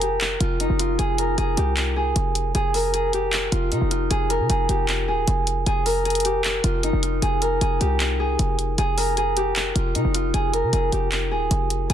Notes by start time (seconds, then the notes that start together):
Already playing: F1 D#4 F4 A#4
0.02 G4, closed hi-hat
0.21 clap, closed hi-hat
0.41 F1 F4, closed hi-hat
0.60 D#4, closed hi-hat
0.70 F1
0.79 F4, closed hi-hat
0.99 F1 G#4, closed hi-hat
1.18 A#4, closed hi-hat
1.38 F1 G#4, closed hi-hat
1.57 C2 G4, closed hi-hat
1.77 clap, closed hi-hat
1.96 G#4
2.16 F1, closed hi-hat
2.35 closed hi-hat
2.55 F1 G#4, closed hi-hat
2.74 A#4, open hi-hat
2.94 G#4, closed hi-hat
3.13 G4, closed hi-hat
3.33 clap, closed hi-hat
3.52 F1 F4, closed hi-hat
3.72 C3 D#4, closed hi-hat
3.81 F1
3.91 F4, closed hi-hat
4.10 F1 G#4, closed hi-hat
4.30 A#4, closed hi-hat
4.40 C3
4.50 F1 G#4, closed hi-hat
4.69 F1 G4, closed hi-hat
4.89 clap, closed hi-hat
5.08 D#1 G#4
5.28 F1, closed hi-hat
5.47 closed hi-hat
5.66 F1 G#4, closed hi-hat
5.86 A#4, open hi-hat
6.05 G#4, closed hi-hat
6.10 closed hi-hat
6.15 closed hi-hat
6.20 closed hi-hat
6.25 G4, closed hi-hat
6.44 clap, closed hi-hat
6.64 F1 F4, closed hi-hat
6.83 D#4, closed hi-hat
6.93 F1
7.03 F4, closed hi-hat
7.22 F1 G#4, closed hi-hat
7.42 A#4, closed hi-hat
7.61 F1 G#4, closed hi-hat
7.81 C2 G4, closed hi-hat
8.00 clap, closed hi-hat
8.20 G#4
8.39 F1, closed hi-hat
8.59 closed hi-hat
8.78 F1 G#4, closed hi-hat
8.98 A#4, open hi-hat
9.17 G#4, closed hi-hat
9.37 G4, closed hi-hat
9.56 clap, closed hi-hat
9.75 F1 F4, closed hi-hat
9.95 C3 D#4, closed hi-hat
10.05 F1
10.14 F4, closed hi-hat
10.34 F1 G#4, closed hi-hat
10.53 A#4, closed hi-hat
10.63 C3
10.73 F1 G#4, closed hi-hat
10.92 F1 G4, closed hi-hat
11.12 clap, closed hi-hat
11.31 D#1 G#4
11.51 F1, closed hi-hat
11.70 closed hi-hat
11.90 F1 G#4, closed hi-hat